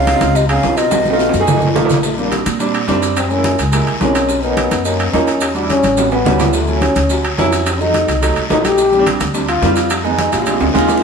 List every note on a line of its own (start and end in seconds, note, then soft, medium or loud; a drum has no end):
0.00 0.16 C#2 medium
0.00 0.36 C#3 medium
0.00 0.38 F5 loud
0.07 high bongo medium
0.07 high conga medium
0.07 high timbale medium
0.07 low timbale medium
0.07 short guiro medium
0.07 maracas soft
0.14 0.38 C4 loud
0.14 0.39 D#4 medium
0.14 0.39 F4 loud
0.21 0.61 C#2 medium
0.21 high bongo soft
0.21 high conga loud
0.21 high timbale medium
0.21 short guiro medium
0.21 maracas medium
0.34 0.48 C3 medium
0.34 0.49 D#5 medium
0.34 high bongo medium
0.34 high conga soft
0.34 long guiro medium
0.34 maracas medium
0.48 0.78 C#3 medium
0.48 0.69 C4 medium
0.48 0.69 D#4 medium
0.48 0.69 G#4 medium
0.48 0.79 F5 medium
0.48 high bongo soft
0.48 high conga soft
0.48 high timbale medium
0.48 maracas soft
0.63 1.28 B1 medium
0.63 high bongo medium
0.63 low bongo medium
0.63 high conga medium
0.63 low timbale medium
0.63 short guiro medium
0.63 maracas soft
0.76 1.75 B2 medium
0.76 0.91 C4 medium
0.76 0.92 D#4 medium
0.76 0.92 F4 medium
0.76 1.76 D#5 medium
0.76 high bongo soft
0.76 high conga soft
0.76 high timbale medium
0.76 short guiro medium
0.76 maracas medium
0.91 high bongo medium
0.91 high conga loud
0.91 high timbale medium
0.91 long guiro medium
0.91 maracas medium
1.05 high bongo soft
1.05 high conga medium
1.05 maracas soft
1.10 1.32 A3 medium
1.10 1.32 D#4 medium
1.10 1.33 F4 loud
1.10 high timbale medium
1.19 high bongo medium
1.19 high timbale medium
1.19 short guiro medium
1.19 maracas soft
1.29 high timbale medium
1.33 1.73 F#2 medium
1.33 high bongo soft
1.33 high conga medium
1.33 short guiro medium
1.33 maracas medium
1.40 1.65 A3 loud
1.40 1.65 D#4 medium
1.40 1.65 G#4 loud
1.47 high bongo medium
1.47 low conga medium
1.47 low timbale medium
1.47 long guiro medium
1.47 maracas medium
1.57 low timbale medium
1.61 high bongo soft
1.61 low conga medium
1.61 maracas soft
1.67 low timbale medium
1.75 2.41 A#1 medium
1.75 1.95 A3 loud
1.75 1.95 D#4 medium
1.75 1.95 F4 loud
1.75 high bongo medium
1.75 low bongo medium
1.75 low conga medium
1.75 low timbale medium
1.75 short guiro medium
1.75 maracas soft
1.85 low timbale medium
1.90 low conga medium
1.90 short guiro medium
1.90 maracas medium
1.94 low timbale medium
2.03 2.17 A3 medium
2.03 high bongo medium
2.03 long guiro medium
2.03 maracas medium
2.17 2.22 G3 medium
2.17 2.44 A#3 medium
2.17 2.23 C4 medium
2.17 2.23 D4 medium
2.17 high conga soft
2.17 maracas soft
2.24 2.49 G3 medium
2.24 2.50 C4 medium
2.24 2.50 D4 medium
2.31 high bongo medium
2.31 high conga medium
2.31 high timbale medium
2.31 low timbale medium
2.31 short guiro medium
2.31 maracas soft
2.45 2.85 A#2 medium
2.45 high bongo soft
2.45 high conga medium
2.45 high timbale medium
2.45 short guiro medium
2.45 maracas medium
2.59 2.79 G3 medium
2.59 2.80 C4 medium
2.59 2.80 D4 loud
2.59 high bongo medium
2.59 high conga soft
2.59 long guiro medium
2.59 maracas medium
2.74 high bongo soft
2.74 high conga soft
2.74 high timbale medium
2.74 maracas soft
2.87 3.53 F#2 medium
2.87 3.16 G3 loud
2.87 3.16 C4 medium
2.87 3.16 D4 loud
2.87 high bongo medium
2.87 low bongo medium
2.87 high conga medium
2.87 low timbale medium
2.87 short guiro medium
2.87 maracas soft
3.02 high bongo soft
3.02 high conga soft
3.02 high timbale medium
3.02 short guiro medium
3.02 maracas medium
3.16 3.33 C4 medium
3.16 high bongo medium
3.16 high conga soft
3.16 high timbale medium
3.16 long guiro medium
3.16 maracas medium
3.30 3.35 G#3 medium
3.30 3.35 A#3 medium
3.30 3.59 C#4 medium
3.30 3.36 E4 medium
3.30 high bongo soft
3.30 high conga soft
3.30 maracas soft
3.36 3.62 G#3 medium
3.36 3.62 A#3 medium
3.36 3.62 E4 medium
3.44 high bongo medium
3.44 high conga medium
3.44 high timbale medium
3.44 low timbale medium
3.44 short guiro medium
3.44 maracas soft
3.58 3.85 C#2 medium
3.58 high bongo soft
3.58 high conga soft
3.58 high timbale medium
3.58 short guiro medium
3.58 maracas medium
3.72 3.92 G#3 medium
3.72 3.92 A#3 medium
3.72 3.93 E4 medium
3.72 high bongo medium
3.72 high timbale medium
3.72 long guiro medium
3.72 maracas medium
3.87 4.00 C2 medium
3.87 high bongo soft
3.87 high conga soft
3.87 high timbale medium
3.87 maracas soft
4.00 4.66 B1 medium
4.00 4.29 G#3 medium
4.00 4.29 A#3 medium
4.00 4.29 C4 loud
4.00 4.45 C#4 medium
4.00 high bongo medium
4.00 low bongo medium
4.00 high conga medium
4.00 low timbale medium
4.00 short guiro medium
4.00 maracas soft
4.15 high timbale loud
4.15 short guiro medium
4.15 maracas medium
4.29 high bongo medium
4.29 high conga soft
4.29 long guiro medium
4.29 maracas medium
4.43 4.48 A#3 medium
4.43 4.88 B3 medium
4.43 4.48 C#4 medium
4.43 4.48 D#4 medium
4.43 high conga soft
4.43 maracas soft
4.49 4.74 A#3 medium
4.49 4.75 C#4 medium
4.49 4.75 D#4 medium
4.57 high bongo medium
4.57 high conga medium
4.57 high timbale medium
4.57 low timbale medium
4.57 short guiro medium
4.57 maracas soft
4.71 5.10 F#2 loud
4.71 high bongo soft
4.71 high conga medium
4.71 high timbale medium
4.71 short guiro medium
4.71 maracas medium
4.84 5.04 A#3 medium
4.84 5.15 A#3 medium
4.84 5.05 C#4 medium
4.84 5.05 D#4 medium
4.84 high bongo medium
4.84 high conga soft
4.84 long guiro medium
4.84 maracas medium
4.99 high bongo soft
4.99 high conga soft
4.99 high timbale medium
4.99 maracas soft
5.13 5.78 E2 medium
5.13 5.41 A#3 medium
5.13 5.41 C#4 medium
5.13 5.56 C#4 medium
5.13 5.42 D#4 loud
5.13 high bongo medium
5.13 low bongo medium
5.13 high conga medium
5.13 low timbale medium
5.13 short guiro medium
5.13 maracas soft
5.27 high bongo soft
5.27 high conga soft
5.27 high timbale medium
5.27 short guiro medium
5.27 maracas medium
5.41 high bongo medium
5.41 high conga soft
5.41 high timbale medium
5.41 long guiro medium
5.41 maracas medium
5.55 5.60 G3 medium
5.55 5.60 D4 medium
5.55 5.61 F#4 medium
5.55 high bongo soft
5.55 high conga soft
5.55 maracas soft
5.62 5.87 G3 medium
5.62 5.87 D4 medium
5.62 5.88 E4 medium
5.69 6.09 C#4 medium
5.69 high bongo medium
5.69 high conga medium
5.69 high timbale medium
5.69 low timbale medium
5.69 short guiro medium
5.69 maracas soft
5.83 6.22 A1 medium
5.83 high bongo soft
5.83 high conga loud
5.83 high timbale medium
5.83 short guiro medium
5.83 maracas medium
5.97 6.17 G3 medium
5.97 6.17 B3 medium
5.97 6.17 C#4 medium
5.97 6.17 F#4 medium
5.97 high bongo medium
5.97 high conga medium
5.97 high timbale medium
5.97 long guiro medium
5.97 maracas medium
6.11 6.57 B3 medium
6.11 high bongo soft
6.11 high timbale medium
6.11 maracas soft
6.25 6.90 D2 medium
6.25 6.53 G3 medium
6.25 6.54 B3 medium
6.25 6.54 C#4 medium
6.25 6.54 F#4 medium
6.25 high bongo medium
6.25 low bongo medium
6.25 low conga loud
6.25 short guiro medium
6.25 maracas soft
6.39 low conga medium
6.39 low timbale loud
6.39 short guiro medium
6.39 maracas medium
6.53 6.85 A3 medium
6.53 high bongo medium
6.53 long guiro medium
6.53 maracas medium
6.67 6.73 F#3 medium
6.67 6.73 C#4 medium
6.67 6.73 E4 medium
6.67 high conga soft
6.67 maracas soft
6.75 7.00 F#3 medium
6.75 7.00 C#4 medium
6.75 7.00 E4 medium
6.81 7.25 C#4 medium
6.81 high bongo medium
6.81 high conga medium
6.81 high timbale medium
6.81 low timbale medium
6.81 short guiro medium
6.81 maracas soft
6.95 7.35 D2 medium
6.95 high bongo soft
6.95 high conga medium
6.95 high timbale medium
6.95 short guiro medium
6.95 maracas medium
7.10 7.29 F#3 medium
7.10 7.30 C#4 medium
7.10 7.30 F#4 medium
7.10 high bongo medium
7.10 high conga soft
7.10 long guiro medium
7.10 maracas medium
7.24 high bongo soft
7.24 high conga soft
7.24 high timbale medium
7.24 maracas soft
7.38 8.03 F2 medium
7.38 7.66 F#3 loud
7.38 7.66 C#4 medium
7.38 7.67 E4 loud
7.38 high bongo medium
7.38 low bongo medium
7.38 high conga medium
7.38 low timbale medium
7.38 short guiro medium
7.38 maracas soft
7.52 high bongo soft
7.52 high conga soft
7.52 high timbale medium
7.52 short guiro medium
7.52 maracas medium
7.66 7.82 C4 medium
7.66 high bongo medium
7.66 high conga soft
7.66 high timbale medium
7.66 long guiro medium
7.66 maracas medium
7.80 7.85 F#3 medium
7.80 7.85 A3 medium
7.80 8.22 D#4 medium
7.80 7.86 D#4 medium
7.80 high bongo soft
7.80 high conga soft
7.80 maracas soft
7.87 8.12 F#3 medium
7.87 8.12 A3 medium
7.87 8.12 D#4 medium
7.94 high bongo medium
7.94 high conga medium
7.94 high timbale medium
7.94 low timbale medium
7.94 short guiro medium
7.94 maracas soft
8.08 8.34 C2 loud
8.08 high bongo soft
8.08 high conga soft
8.08 high timbale medium
8.08 short guiro medium
8.08 maracas medium
8.21 8.42 F#3 medium
8.21 8.42 A3 medium
8.21 8.42 D#4 loud
8.21 high bongo medium
8.21 high conga soft
8.21 high timbale medium
8.21 long guiro medium
8.21 maracas medium
8.36 8.49 C2 medium
8.36 high bongo soft
8.36 high conga soft
8.36 high timbale medium
8.36 maracas soft
8.50 9.15 A#1 medium
8.50 8.78 F#3 medium
8.50 8.78 A3 medium
8.50 8.79 D#4 loud
8.50 8.66 D#4 medium
8.50 high bongo medium
8.50 low bongo medium
8.50 high conga medium
8.50 low timbale medium
8.50 short guiro medium
8.50 maracas soft
8.65 9.07 G4 loud
8.65 high conga medium
8.65 high timbale medium
8.65 short guiro medium
8.65 maracas medium
8.78 high bongo medium
8.78 high conga soft
8.78 long guiro medium
8.78 maracas medium
8.92 8.97 G3 medium
8.92 8.97 C4 medium
8.92 8.98 D4 medium
8.92 high conga soft
8.92 maracas soft
8.99 9.24 G3 medium
8.99 9.24 C4 medium
8.99 9.24 D4 loud
9.06 high bongo medium
9.06 high conga medium
9.06 high timbale loud
9.06 low timbale medium
9.06 short guiro medium
9.06 maracas soft
9.20 9.60 D2 medium
9.20 high bongo soft
9.20 high conga loud
9.20 high timbale medium
9.20 short guiro medium
9.20 maracas medium
9.34 9.54 G3 medium
9.34 9.54 C4 medium
9.34 9.54 D4 medium
9.34 9.48 D4 medium
9.34 high bongo medium
9.34 high conga soft
9.34 long guiro medium
9.34 maracas medium
9.48 9.88 F4 loud
9.48 high bongo soft
9.48 high conga soft
9.48 high timbale medium
9.48 maracas soft
9.62 10.27 F2 medium
9.62 9.90 G3 loud
9.62 9.91 C4 medium
9.62 9.91 F4 loud
9.62 high bongo medium
9.62 low bongo medium
9.62 high conga medium
9.62 low timbale medium
9.62 short guiro medium
9.62 maracas soft
9.76 high bongo soft
9.76 high conga soft
9.76 high timbale medium
9.76 short guiro medium
9.76 maracas medium
9.90 high bongo medium
9.90 high conga soft
9.90 high timbale loud
9.90 long guiro medium
9.90 maracas medium
10.04 10.09 G#3 medium
10.04 10.09 B3 medium
10.04 10.10 D#4 medium
10.04 high bongo soft
10.04 high conga soft
10.04 maracas soft
10.10 10.35 G#3 medium
10.10 10.36 B3 medium
10.10 10.36 D#4 medium
10.18 10.34 D#4 medium
10.18 high bongo medium
10.18 high conga medium
10.18 high timbale medium
10.18 low timbale medium
10.18 short guiro medium
10.18 maracas soft
10.32 10.59 A#1 medium
10.32 10.75 F4 loud
10.32 high bongo medium
10.32 high conga soft
10.32 high timbale medium
10.32 short guiro medium
10.32 maracas medium
10.42 10.66 G#3 medium
10.42 high bongo medium
10.46 10.66 C4 medium
10.46 10.66 D4 medium
10.46 high conga soft
10.46 high timbale medium
10.46 long guiro medium
10.46 maracas medium
10.51 high bongo medium
10.60 10.74 D2 medium
10.60 high bongo medium
10.60 high conga soft
10.60 high timbale loud
10.60 maracas soft
10.69 low bongo medium
10.74 11.03 D#2 medium
10.74 11.02 G#3 loud
10.74 11.03 C4 loud
10.74 11.02 F4 loud
10.74 high conga medium
10.74 high timbale loud
10.74 short guiro medium
10.74 maracas soft
10.79 low bongo loud
10.88 low bongo loud
10.88 low timbale medium
10.88 short guiro medium
10.88 maracas medium
10.97 low bongo medium